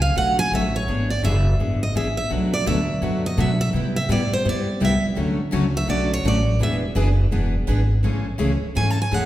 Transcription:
Already playing: C#2
0.02 F5
0.15 B1 D3 F#3 A3 C#4 F#4 F#5
0.39 G#5
0.51 A1 D3 F#3 A3 C#4 F#4 E5
0.76 C#5
0.87 G#1 E3 B3 D4 G#4
1.10 D5
1.23 F#1 E3 B3 D4 G#4 E5
1.59 G#1 E3 B3 D4 G#4
1.83 D#5
1.95 A1 E3 B3 D4 G#4 E5
2.17 E5
2.29 B1 B2 F#3 A3 D4 F#4 B4
2.54 D5
2.66 D2 B2 F#3 A3 D4 F#4 B4 E5
3.02 F#2 B2 F#3 A3 D4 F#4 B4
3.26 D#5
3.37 B2 F#3 A3 D4 F#4 B4 E5
3.61 E5
3.73 C3 G3 B3 E4 G4
3.96 E5
4.09 A2 C3 G3 B3 E4 G4 D5
4.32 C5, muted upright bass stroke
4.45 G2 C3 G3 B3 E4 G4
4.49 D5
4.81 C2 C3 G3 B3 E4 G4 E5
5.03 muted upright bass stroke
5.17 D2 D3 F#3 A3 C#4 F#4 A4
5.51 C#2 D3 F#3 A3 C#4 F#4 A4
5.77 E5
5.87 B1 D3 F#3 A3 C#4 F#4 A4 D5
6.14 C#5
6.24 A1 D3 F#3 A3 C#4 F#4 A4
6.28 D5
6.60 E1 E3 B3 D4 G#4 B4 E5
6.95 F#1 E3 B3 D4 G#4 B4
7.31 E1 E3 B3 D4 G#4 B4
7.68 G#1 E3 B3 D4 G#4 B4
8.03 A1 C#3 E3 G#3 A3 C#4 E4 G#4 A4
8.38 C#2 C#3 E3 G#3 A3 C#4 E4 G#4 A4
8.62 muted upright bass stroke
8.75 G#2 C#3 E3 G#3 A3 C#4 E4 G#4 A4 G#5
8.90 A5
9.02 G#5
9.11 E2 C#3 E3 G#3 A3 C#4 E4 G#4 A4 F#5

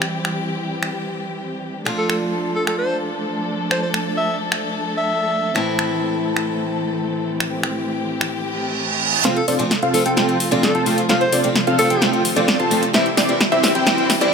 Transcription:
Already playing: E3 G3 C4 E4 G4
0.02 finger snap
0.25 finger snap
0.83 finger snap
1.85 F3 A3 D4 F4 A4, finger snap
1.98 A4
2.10 A4, finger snap
2.56 A4
2.67 A4, finger snap
2.79 C5
3.71 C5, finger snap
3.83 C5
3.94 finger snap
4.17 E5
4.52 finger snap
4.98 E5
5.55 A2 E3 A3 C4 E4, finger snap
5.79 finger snap
6.37 finger snap
7.40 G4, finger snap
7.63 finger snap
8.21 finger snap
8.33 reverse cymbal
9.24 F1 C3 F3 A3 C4 F4 A4 C5 F5, snare, closed hi-hat, riser
9.36 A4, closed hi-hat
9.48 F1 C4 F4 A4 C5 D5, open hi-hat
9.59 F3 A3 C4 F4, closed hi-hat
9.71 snare, closed hi-hat
9.82 F1 C4 F4 A4 C5 F5, closed hi-hat
9.94 F3 A3 C4 F4 A4, open hi-hat
10.05 F1 C4 F4 A4 C5 G5, closed hi-hat
10.17 F3 A3 C4 F4, snare, closed hi-hat
10.29 closed hi-hat
10.40 open hi-hat
10.51 F1 F3 A3 C4 F4 A4 C5 D5, closed hi-hat
10.63 A4, snare, closed hi-hat
10.75 F1 C4 F4 A4 C5 A5, closed hi-hat
10.86 F3 A3 C4 F4, open hi-hat
10.98 closed hi-hat
11.09 F1 F3 A3 C4 F4 A4 C5 F5, snare, closed hi-hat
11.21 C5, closed hi-hat
11.32 F1 C4 F4 A4 C5 D5, open hi-hat
11.43 F3 A3 C4 F4, closed hi-hat
11.56 snare, closed hi-hat
11.67 F1 C4 F4 A4 C5 F5, closed hi-hat
11.78 F3 A3 C4 F4 A4, open hi-hat
11.90 F1 C4 F4 A4 C5 G5, closed hi-hat
12.01 F3 A3 C4 F4, snare, closed hi-hat
12.13 closed hi-hat
12.25 open hi-hat
12.36 F1 F3 A3 C4 F4 A4 C5 D5, closed hi-hat
12.48 snare, closed hi-hat
12.60 F1 C4 F4 A4 C5 A5, closed hi-hat
12.71 F3 A3 C4 F4, open hi-hat
12.83 closed hi-hat
12.93 C2 E3 G3 C4 E4 G4 C5 E5, snare, closed hi-hat
13.06 closed hi-hat
13.17 C2 C4 E4 G4 C5 D5, snare, open hi-hat
13.28 E3 G3 C4 E4, closed hi-hat
13.41 snare, closed hi-hat
13.52 C2 C4 E4 G4 C5 E5, closed hi-hat
13.63 E3 G3 C4 E4, snare, open hi-hat
13.75 C2 C4 E4 G4 C5 G5, closed hi-hat
13.86 E3 G3 C4 E4, snare, closed hi-hat
13.98 closed hi-hat
14.10 snare, open hi-hat
14.20 C2 E3 G3 C4 E4 G4 C5 D5, closed hi-hat

